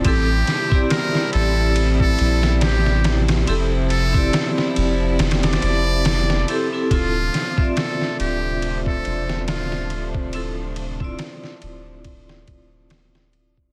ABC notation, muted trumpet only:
X:1
M:4/4
L:1/16
Q:"Swing 16ths" 1/4=70
K:Dm
V:1 name="Muted trumpet"
G4 B2 A3 A3 G3 z | z2 A3 z4 d6 z | F4 A2 G3 A3 F3 z | z16 |]